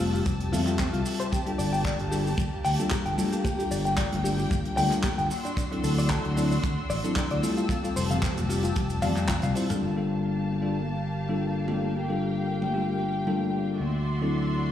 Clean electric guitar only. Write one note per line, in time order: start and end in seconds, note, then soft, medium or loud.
0.14 0.20 F4 medium
0.52 0.60 F4 medium
0.67 0.73 F4 medium
0.79 0.86 C4 medium
0.93 0.99 F4 medium
1.20 1.26 C5 medium
1.32 1.39 G4 medium
1.46 1.50 G4 medium
1.58 1.66 D5 medium
1.73 1.79 G5 medium
1.85 1.96 D5 medium
2.11 2.16 G4 medium
2.26 2.32 G4 medium
2.65 2.69 G5 medium
2.91 2.96 G4 medium
3.06 3.15 G5 medium
3.32 3.38 G4 medium
3.44 3.52 G4 medium
3.59 3.63 G4 medium
3.71 3.78 D5 medium
3.85 3.92 G5 medium
3.97 4.08 D5 medium
4.24 4.29 G4 medium
4.38 4.45 G4 medium
4.77 4.82 G5 loud
5.04 5.08 G4 medium
5.18 5.27 G5 medium
5.45 5.51 D4 medium
5.57 5.64 D4 medium
5.72 5.75 D4 medium
5.84 5.91 A4 medium
5.98 6.04 D5 medium
6.10 6.21 A4 medium
6.37 6.41 D4 medium
6.51 6.57 D4 medium
6.90 6.94 D5 loud
7.17 7.21 D4 medium
7.31 7.40 D5 medium
7.57 7.64 F4 medium
7.70 7.77 F4 medium
7.84 7.88 F4 medium
7.96 8.03 C5 medium
8.11 8.17 F5 medium
8.23 8.33 C5 medium
8.49 8.53 F4 medium
8.63 8.70 F4 medium
9.02 9.07 F5 loud
9.29 9.33 F4 medium
9.43 9.52 F5 medium
9.70 9.76 F4 medium